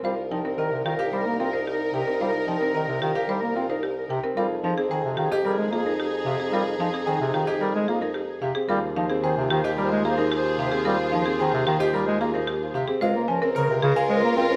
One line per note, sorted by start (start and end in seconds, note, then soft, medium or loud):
0.04 4.22 C2 medium
0.04 0.14 G3 medium
0.04 4.19 D#4 medium
0.04 0.22 F4 medium
0.04 4.19 A#4 medium
0.04 0.25 A#4 soft
0.04 0.22 C5 medium
0.31 0.42 F3 medium
0.31 0.49 D#4 medium
0.31 0.52 A#4 soft
0.31 0.49 G5 medium
0.44 0.62 C4 medium
0.44 0.63 A#4 medium
0.58 0.69 D#3 medium
0.58 0.76 A#4 medium
0.58 0.81 A#4 medium
0.58 0.76 D#5 medium
0.72 0.82 C3 medium
0.85 0.95 D#3 medium
0.85 1.03 F4 medium
0.85 1.03 G4 medium
0.85 1.08 A#4 medium
0.99 1.17 G4 loud
0.99 1.17 F5 medium
1.12 1.23 G3 medium
1.12 1.30 C5 medium
1.17 1.36 A#4 medium
1.26 1.36 A#3 medium
1.39 1.50 C4 medium
1.39 1.57 F4 medium
1.39 1.57 A#4 medium
1.44 1.64 A#4 medium
1.53 1.71 D#4 medium
1.53 1.71 C5 medium
1.67 1.84 G4 medium
1.72 1.92 A#4 medium
1.94 2.04 C3 medium
1.94 2.11 G4 medium
1.94 2.11 G5 medium
2.00 2.20 A#4 medium
2.07 2.25 C4 medium
2.07 2.25 A#4 medium
2.20 2.31 G3 medium
2.20 2.38 F4 medium
2.20 2.38 C5 medium
2.28 2.48 A#4 medium
2.48 2.58 F3 medium
2.48 2.65 D#4 medium
2.48 2.65 G5 medium
2.56 2.75 A#4 medium
2.61 2.79 C4 medium
2.61 2.79 A#4 medium
2.74 2.85 D#3 medium
2.74 2.92 A#4 medium
2.74 2.93 D#5 medium
2.84 3.03 A#4 medium
2.88 2.98 C3 medium
3.02 3.12 D#3 medium
3.02 3.19 F4 medium
3.02 3.19 G4 medium
3.12 3.33 G4 medium
3.12 3.31 A#4 medium
3.12 3.33 F5 medium
3.29 3.39 G3 medium
3.29 3.46 C5 medium
3.40 3.53 A#3 medium
3.40 3.59 A#4 medium
3.56 3.66 C4 medium
3.56 3.73 F4 medium
3.56 3.74 A#4 medium
3.68 3.87 D#4 medium
3.68 3.87 A#4 soft
3.68 3.87 C5 medium
3.83 4.00 G4 medium
3.96 4.15 A#4 soft
4.09 4.20 C3 medium
4.09 4.27 G4 medium
4.09 4.28 G5 medium
4.23 4.41 C4 medium
4.23 4.36 A#4 medium
4.37 8.55 F2 medium
4.37 4.47 G3 medium
4.37 8.52 D#4 medium
4.37 4.54 F4 medium
4.37 8.52 G#4 medium
4.37 4.57 G#4 soft
4.37 4.55 A#4 medium
4.64 4.74 F3 medium
4.64 4.81 D#4 medium
4.64 4.84 G#4 soft
4.64 4.82 F5 medium
4.77 4.95 C4 medium
4.77 4.95 G#4 medium
4.91 5.01 D#3 medium
4.91 5.09 G#4 medium
4.91 5.12 G#4 medium
4.91 5.09 C5 medium
5.05 5.15 C3 medium
5.17 5.28 D#3 medium
5.17 5.36 F4 medium
5.17 5.35 G4 medium
5.17 5.40 G#4 medium
5.32 5.49 G4 loud
5.32 5.49 D#5 medium
5.45 5.55 G3 medium
5.45 5.68 G#4 medium
5.45 5.63 A#4 medium
5.58 5.68 G#3 medium
5.71 5.82 A#3 medium
5.71 5.90 F4 medium
5.71 5.90 G#4 medium
5.77 5.96 G#4 medium
5.85 6.03 D#4 medium
5.85 6.03 A#4 medium
6.00 6.17 G4 medium
6.05 6.24 G#4 medium
6.26 6.36 C3 medium
6.26 6.44 G4 medium
6.26 6.44 F5 medium
6.33 6.52 G#4 medium
6.40 6.57 C4 medium
6.40 6.57 G#4 medium
6.53 6.63 G3 medium
6.53 6.71 F4 medium
6.53 6.71 A#4 loud
6.61 6.80 G#4 medium
6.80 6.90 F3 medium
6.80 6.98 D#4 medium
6.80 6.98 F5 medium
6.88 7.08 G#4 medium
6.93 7.11 C4 medium
6.93 7.11 G#4 medium
7.07 7.17 D#3 medium
7.07 7.25 G#4 medium
7.07 7.25 C5 medium
7.16 7.36 G#4 medium
7.21 7.31 C3 medium
7.33 7.44 D#3 medium
7.33 7.51 F4 medium
7.33 7.52 G4 medium
7.44 7.65 G4 loud
7.44 7.64 G#4 medium
7.44 7.65 D#5 medium
7.61 7.71 G3 medium
7.61 7.79 A#4 medium
7.72 7.85 G#3 medium
7.72 7.92 G#4 medium
7.88 7.99 A#3 medium
7.88 8.06 F4 medium
7.88 8.06 G#4 medium
8.01 8.19 D#4 medium
8.01 8.20 G#4 medium
8.01 8.19 A#4 medium
8.14 8.33 G4 medium
8.28 8.48 G#4 soft
8.42 8.53 C3 medium
8.42 8.60 G4 medium
8.42 8.60 F5 medium
8.55 8.73 C4 medium
8.55 8.73 G#4 medium
8.69 12.87 D#2 medium
8.69 8.80 G3 medium
8.69 8.87 F4 loud
8.69 12.84 F4 medium
8.69 12.84 G#4 medium
8.69 8.87 A#4 loud
8.69 8.89 C5 soft
8.96 9.07 F3 medium
8.96 9.14 D#4 medium
8.96 9.17 C5 medium
8.96 9.14 F5 medium
9.10 9.27 C4 medium
9.10 9.27 G#4 medium
9.23 9.34 D#3 medium
9.23 9.41 G#4 medium
9.23 9.41 C5 medium
9.23 9.45 C5 medium
9.37 9.47 C3 medium
9.50 9.61 D#3 medium
9.50 9.68 F4 medium
9.50 9.68 G4 loud
9.50 9.73 C5 medium
9.64 9.82 G4 loud
9.64 9.82 D#5 medium
9.78 9.88 G3 medium
9.78 9.95 A#4 medium
9.82 10.01 C5 medium
9.91 10.01 G#3 medium
10.05 10.15 A#3 medium
10.05 10.22 F4 medium
10.05 10.22 G#4 medium
10.09 10.29 C5 medium
10.18 10.36 D#4 medium
10.18 10.35 A#4 medium
10.32 10.49 G4 loud
10.37 10.57 C5 medium
10.59 10.69 C3 medium
10.59 10.76 G4 medium
10.59 10.76 F5 medium
10.66 10.85 C5 medium
10.72 10.90 C4 medium
10.72 10.89 G#4 medium
10.85 10.96 G3 medium
10.85 11.03 F4 medium
10.85 11.03 A#4 loud
10.94 11.13 C5 medium
11.12 11.23 F3 medium
11.12 11.30 D#4 medium
11.12 11.30 F5 medium
11.22 11.41 C5 medium
11.26 11.44 C4 medium
11.26 11.44 G#4 medium
11.40 11.50 D#3 medium
11.40 11.57 G#4 medium
11.40 11.57 C5 medium
11.49 11.68 C5 medium
11.54 11.64 C3 medium
11.66 11.77 D#3 medium
11.66 11.84 F4 medium
11.66 11.84 G4 loud
11.78 11.98 G4 loud
11.78 11.97 C5 medium
11.78 11.98 D#5 medium
11.94 12.04 G3 medium
11.94 12.11 A#4 medium
12.05 12.17 G#3 medium
12.05 12.24 C5 medium
12.21 12.31 A#3 medium
12.21 12.38 F4 medium
12.21 12.38 G#4 medium
12.33 12.52 D#4 medium
12.33 12.52 A#4 medium
12.33 12.52 C5 medium
12.47 12.65 G4 medium
12.61 12.80 C5 soft
12.74 12.85 C3 medium
12.74 12.92 G4 medium
12.74 12.92 F5 medium
12.88 13.06 C4 medium
12.88 13.06 G#4 loud
13.01 14.56 C#2 medium
13.01 13.12 G#3 medium
13.01 13.19 F4 loud
13.01 14.56 F4 medium
13.01 14.56 A#4 medium
13.01 13.22 A#4 soft
13.01 13.19 C5 loud
13.16 13.26 A#3 medium
13.28 13.39 F3 medium
13.28 13.46 C#4 medium
13.28 13.50 A#4 medium
13.28 13.46 G#5 medium
13.42 13.60 C4 medium
13.42 13.60 A#4 loud
13.55 13.67 C#3 medium
13.55 13.73 A#4 loud
13.55 13.77 A#4 medium
13.55 13.73 C#5 medium
13.70 13.80 C3 medium
13.82 13.93 C#3 medium
13.82 14.00 F4 medium
13.82 14.00 G#4 loud
13.82 14.05 A#4 medium
13.96 14.14 G#4 loud
13.96 14.14 F5 medium
14.10 14.20 G#3 medium
14.10 14.27 C5 medium
14.14 14.33 A#4 medium
14.23 14.34 A#3 medium
14.37 14.47 C4 medium
14.37 14.55 F4 loud
14.37 14.54 A#4 medium
14.41 14.56 A#4 medium
14.50 14.56 C#4 medium
14.50 14.56 C5 medium